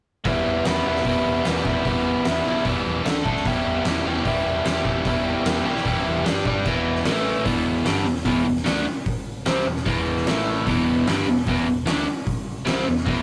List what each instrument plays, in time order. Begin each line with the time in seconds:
0.25 picked electric bass E1, overdriven electric guitar E2 B2 E3 G3 B3 E4, kick, open hi-hat
0.46 picked electric bass E1
0.65 picked electric bass E1, overdriven electric guitar E2 B2 E3 G3 B3 E4, snare, open hi-hat
0.84 picked electric bass E1, overdriven electric guitar E2 B2 E3 G3 B3 E4
0.96 snare
1.04 picked electric bass E1, overdriven electric guitar E2 B2 E3 G3 B3 E4, kick, open hi-hat
1.26 picked electric bass E1
1.44 picked electric bass E1, overdriven electric guitar E2 B2 E3 G3 B3 E4, snare, open hi-hat
1.64 picked electric bass E1, overdriven electric guitar E2 B2 E3 G3 B3 E4, kick
1.85 picked electric bass E1, overdriven electric guitar E2 B2 E3 G3 B3 E4, kick, open hi-hat
2.25 picked electric bass E1, overdriven electric guitar E2 B2 E3 G3 B3 E4, snare, open hi-hat
2.45 picked electric bass B1, overdriven electric guitar E2 B2 E3 G3 B3 E4
2.64 picked electric bass E1, overdriven electric guitar E2 B2 E3 G3 B3 E4, kick, open hi-hat
2.85 picked electric bass E2
3.04 overdriven electric guitar D3 A3 D4 A4, snare, open hi-hat
3.24 picked electric bass D2, overdriven electric guitar D3 A3 D4 A4, kick
3.36 snare
3.45 picked electric bass E1, overdriven electric guitar E2 B2 E3 G3 E4 G4, kick, open hi-hat
3.65 picked electric bass E1
3.84 picked electric bass E1, overdriven electric guitar E2 B2 E3 G3 E4 G4, snare, open hi-hat
4.04 picked electric bass E1, overdriven electric guitar E2 B2 E3 G3 E4 G4
4.23 picked electric bass E1, overdriven electric guitar E2 B2 E3 G3 E4 G4, kick, open hi-hat
4.45 picked electric bass E1
4.64 picked electric bass E1, overdriven electric guitar E2 B2 E3 G3 E4 G4, snare, open hi-hat
4.84 picked electric bass E1, overdriven electric guitar E2 B2 E3 G3 E4 G4, kick
5.04 picked electric bass E1, overdriven electric guitar E2 B2 E3 G3 E4 G4, kick, open hi-hat
5.44 picked electric bass E1, overdriven electric guitar E2 B2 E3 G3 E4 G4, snare, open hi-hat
5.63 picked electric bass B1, overdriven electric guitar E2 B2 E3 G3 E4 G4
5.77 snare
5.85 picked electric bass E1, overdriven electric guitar E2 B2 E3 G3 E4 G4, kick, open hi-hat
6.06 picked electric bass E2
6.24 picked electric bass G1, overdriven electric guitar G3 D4 G4 D5, snare, open hi-hat
6.45 picked electric bass G1, overdriven electric guitar G3 D4 G4 D5, kick
6.64 picked electric bass E1, overdriven electric guitar E2 B2 E3, kick, crash
6.96 snare
7.04 picked electric bass A1, overdriven electric guitar A2 E3 A3, snare, open hi-hat
7.44 picked electric bass E1, overdriven electric guitar E2 B2 E3, kick, open hi-hat
7.84 picked electric bass G1, overdriven electric guitar G2 D3 G3, snare, open hi-hat
8.05 picked electric bass E1, overdriven electric guitar E2 B2
8.16 snare
8.25 picked electric bass E1, overdriven electric guitar E2 B2 E3, kick, open hi-hat
8.45 picked electric bass E1, overdriven electric guitar E2 B2
8.56 snare
8.64 picked electric bass D2, overdriven electric guitar D3 A3 D4, snare, open hi-hat
9.06 kick, open hi-hat
9.46 picked electric bass C2, overdriven electric guitar C3 G3 C4, snare, open hi-hat
9.66 picked electric bass E1, overdriven electric guitar E2 B2
9.76 snare
9.85 picked electric bass E1, overdriven electric guitar E2 B2 E3, kick, open hi-hat
10.17 snare
10.26 picked electric bass A1, overdriven electric guitar A2 E3 A3, snare, open hi-hat
10.66 picked electric bass E1, overdriven electric guitar E2 B2 E3, kick, open hi-hat
11.06 picked electric bass G1, overdriven electric guitar G2 D3 G3, snare, open hi-hat
11.26 picked electric bass E1, overdriven electric guitar E2 B2
11.47 picked electric bass E1, overdriven electric guitar E2 B2 E3, kick, open hi-hat
11.66 picked electric bass E1, overdriven electric guitar E2 B2
11.86 picked electric bass D2, overdriven electric guitar D3 A3 D4, snare, open hi-hat
12.27 kick, open hi-hat
12.65 picked electric bass C2, overdriven electric guitar C3 G3 C4, snare, open hi-hat
12.86 picked electric bass E1, overdriven electric guitar E2 B2
12.97 snare
13.05 picked electric bass E1, overdriven electric guitar E2 B2 E3, kick, open hi-hat